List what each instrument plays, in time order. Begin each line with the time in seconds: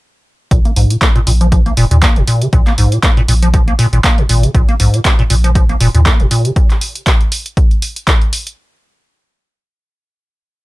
0.51 sub bass A#1, acid bass A#2, kick, closed hi-hat
0.65 acid bass A#3, closed hi-hat
0.76 sub bass A#1, acid bass G#2, open hi-hat
0.90 acid bass A#2, closed hi-hat
1.02 acid bass A#3, kick, clap, closed hi-hat
1.16 acid bass A#2, closed hi-hat
1.27 sub bass A#1, acid bass A#2, open hi-hat
1.41 acid bass F3, closed hi-hat
1.52 acid bass F3, kick, closed hi-hat
1.66 acid bass A#3, closed hi-hat
1.77 sub bass F1, acid bass A#2, open hi-hat
1.91 sub bass D#2, acid bass A#2, closed hi-hat
2.02 acid bass A#3, kick, clap, closed hi-hat
2.16 sub bass F1, acid bass A#2, closed hi-hat
2.27 acid bass A#2, open hi-hat
2.42 acid bass C#3, closed hi-hat
2.53 sub bass A#1, acid bass A#2, kick, closed hi-hat
2.67 acid bass A#3, clap, closed hi-hat
2.78 sub bass A#1, acid bass G#2, open hi-hat
2.92 acid bass A#2, closed hi-hat
3.03 acid bass A#3, kick, clap, closed hi-hat
3.17 acid bass A#2, closed hi-hat
3.28 sub bass A#1, acid bass A#2, open hi-hat
3.42 acid bass F3, closed hi-hat
3.54 acid bass F3, kick, closed hi-hat
3.68 acid bass A#3, closed hi-hat
3.79 acid bass A#2, open hi-hat
3.93 sub bass G#1, acid bass A#2, closed hi-hat
4.04 acid bass A#3, kick, clap, closed hi-hat
4.18 acid bass A#2, closed hi-hat
4.29 sub bass G#1, acid bass A#2, open hi-hat
4.43 acid bass C#3, closed hi-hat
4.54 sub bass A#1, acid bass A#2, kick, closed hi-hat
4.69 acid bass A#3, closed hi-hat
4.80 sub bass A#1, acid bass G#2, open hi-hat
4.94 acid bass A#2, closed hi-hat
5.05 acid bass A#3, kick, clap, closed hi-hat
5.19 acid bass A#2, closed hi-hat
5.30 sub bass A#1, acid bass A#2, open hi-hat
5.44 acid bass F3, closed hi-hat
5.55 acid bass F3, kick, closed hi-hat
5.69 acid bass A#3, closed hi-hat
5.81 sub bass F1, acid bass A#2, open hi-hat
5.95 sub bass D#2, acid bass A#2, closed hi-hat
6.06 acid bass A#3, kick, clap, closed hi-hat
6.20 sub bass F1, acid bass A#2, closed hi-hat
6.31 acid bass A#2, open hi-hat
6.45 acid bass C#3, closed hi-hat
6.56 kick, closed hi-hat
6.70 clap, closed hi-hat
6.81 open hi-hat
6.95 closed hi-hat
7.07 kick, clap, closed hi-hat
7.21 closed hi-hat
7.32 open hi-hat
7.46 closed hi-hat
7.57 kick, closed hi-hat
7.71 closed hi-hat
7.82 open hi-hat
7.96 closed hi-hat
8.07 kick, clap, closed hi-hat
8.22 closed hi-hat
8.33 open hi-hat
8.47 closed hi-hat